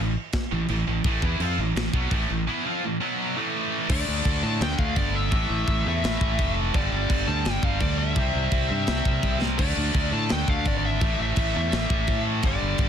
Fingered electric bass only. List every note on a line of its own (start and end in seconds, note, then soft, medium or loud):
0.00 0.15 A1 medium
0.52 0.69 A1 medium
0.69 0.86 A1 medium
0.87 1.04 A1 medium
1.04 1.21 A1 medium
1.22 1.39 E2 medium
1.40 1.57 F2 medium
1.58 1.75 A1 medium
1.75 1.92 A1 medium
1.93 2.10 B1 loud
2.11 2.28 A1 loud
2.30 2.47 A1 medium
3.90 4.06 D2 medium
4.08 4.24 D2 medium
4.25 4.41 D2 medium
4.43 4.59 A2 loud
4.61 4.77 D2 loud
4.78 4.95 D2 loud
4.96 5.28 G1 loud
5.32 5.48 A1 loud
5.50 5.66 A1 medium
5.68 5.84 A1 medium
5.86 6.02 E2 medium
6.04 6.20 A1 loud
6.21 6.37 A1 medium
6.39 6.71 F1 medium
6.74 6.91 G1 loud
6.92 7.08 G1 loud
7.10 7.26 G1 medium
7.28 7.44 D2 loud
7.46 7.62 G1 loud
7.63 7.79 G1 medium
7.81 8.13 D2 medium
8.16 8.33 C2 loud
8.35 8.51 C2 medium
8.52 8.68 C2 medium
8.71 8.87 G2 loud
8.88 9.04 C2 loud
9.05 9.22 C2 medium
9.23 9.56 C2 medium
9.59 9.75 D2 loud
9.77 9.93 D2 medium
9.94 10.11 D2 medium
10.12 10.29 A2 loud
10.31 10.47 D2 loud
10.48 10.64 D2 medium
10.66 10.98 G#1 loud
11.01 11.18 A1 loud
11.20 11.36 A1 medium
11.37 11.53 A1 medium
11.56 11.72 E2 loud
11.73 11.89 A1 loud
11.90 12.06 A1 medium
12.08 12.40 A2 medium
12.44 12.60 G1 loud
12.62 12.78 G1 medium
12.78 12.89 G1 medium